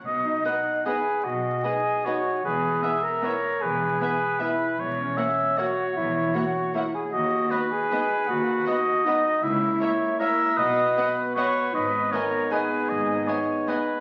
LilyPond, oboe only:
\new Staff \with { instrumentName = "Oboe" } { \time 3/4 \key b \major \tempo 4 = 154 dis''4 fis''4 b'4 | dis''2 cis''4 | b'4 e''4 cis''4 | b'4 b'2 |
cis''4 e''4 cis''4~ | cis''2~ cis''8 r8 | dis''4 b'2~ | b'4 dis''2 |
e''4 cis''4 ais'4 | b'2 b'4 | dis''4 cis''4 b'4 | dis''4 cis''4 b'4 | }